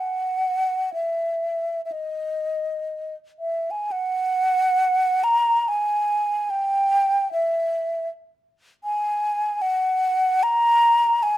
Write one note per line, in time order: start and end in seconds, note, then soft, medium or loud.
0.00 0.93 F#5 medium
0.94 1.81 E5 medium
1.85 1.93 E5 soft
1.92 3.16 D#5 medium
3.39 3.72 E5 medium
3.71 3.93 G#5 medium
3.92 5.25 F#5 medium
5.24 5.70 A#5 medium
5.68 6.52 G#5 medium
6.50 7.32 G5 medium
7.33 8.08 E5 medium
8.84 9.63 G#5 medium
9.62 10.45 F#5 medium
10.43 11.24 A#5 medium
11.23 11.38 G#5 medium